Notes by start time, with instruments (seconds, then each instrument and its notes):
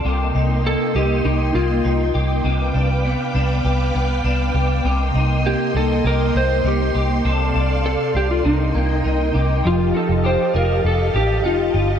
Already playing: clean electric guitar C4 D4
0.04 fingered electric bass C2, clean electric guitar C3 G4, string machine A#3 D#5 G5 C6
0.35 fingered electric bass C2, clean electric guitar D#4
0.64 clean electric guitar A#3, electric slide guitar A4
0.95 fingered electric bass C2, clean electric guitar D#4, electric slide guitar G4
1.24 fingered electric bass C2, electric slide guitar D#4, clean electric guitar G4
1.54 fingered electric bass C2, clean electric guitar A#3, electric slide guitar F4
1.84 fingered electric bass C2, clean electric guitar D#4
2.14 fingered electric bass C2, clean electric guitar G4
2.44 fingered electric bass C2, clean electric guitar C3 G4, string machine B4 F5 D6
2.74 fingered electric bass C2, clean electric guitar D4
3.05 clean electric guitar B3
3.34 fingered electric bass C2, clean electric guitar D4
3.65 fingered electric bass C2, clean electric guitar G4
3.94 fingered electric bass C2, clean electric guitar B3
4.24 fingered electric bass C2, clean electric guitar D4
4.54 fingered electric bass C2, clean electric guitar G4
4.84 fingered electric bass C2, clean electric guitar C3 G4, string machine A#3 D#5 C6
5.15 fingered electric bass C2, clean electric guitar D#4
5.45 clean electric guitar A#3, electric slide guitar G4
5.74 fingered electric bass C2, clean electric guitar D#4, electric slide guitar A4
6.04 fingered electric bass C2, clean electric guitar G4, electric slide guitar A#4
6.35 fingered electric bass C2, clean electric guitar A#3, electric slide guitar C5
6.64 fingered electric bass C2, clean electric guitar D#4, electric slide guitar G4
6.95 fingered electric bass C2, clean electric guitar G4
7.24 fingered electric bass C2, clean electric guitar C3 A4, string machine A4 D5 F5
7.54 fingered electric bass C2, clean electric guitar D4
7.84 clean electric guitar C4, electric slide guitar A4
8.14 fingered electric bass C2, clean electric guitar D4, electric slide guitar G4
8.31 electric slide guitar F4
8.44 fingered electric bass C2, clean electric guitar C3, electric slide guitar D#4, string machine A#4 D#5 G5
8.74 fingered electric bass C2, clean electric guitar A#3
9.04 fingered electric bass C2, clean electric guitar D#4
9.34 fingered electric bass C2, clean electric guitar G4
9.64 fingered electric bass F1, clean electric guitar F3, electric slide guitar F4, string machine G4 D#5 F5 A5
9.94 clean electric guitar D#4, electric slide guitar A4
10.09 fingered electric bass F1
10.24 clean electric guitar G4, electric slide guitar C5
10.54 fingered electric bass F1, clean electric guitar F4, electric slide guitar A#4
10.84 fingered electric bass F1, electric slide guitar A4
11.14 fingered electric bass A1, clean electric guitar G4, electric slide guitar G4
11.44 fingered electric bass F1, clean electric guitar D#4, electric slide guitar F4
11.74 fingered electric bass G1, clean electric guitar F4